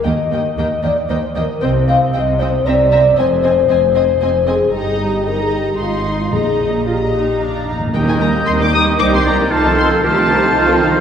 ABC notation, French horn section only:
X:1
M:3/4
L:1/16
Q:1/4=115
K:Eb
V:1 name="French horn section"
e6 d2 c2 B2 | c2 f2 e2 c2 d4 | c8- c2 A2 | G A G2 B A G2 F2 E F |
A4 G4 z4 | G, A, B,2 C D E2 D C B,2 | =A,2 C2 A,6 z2 |]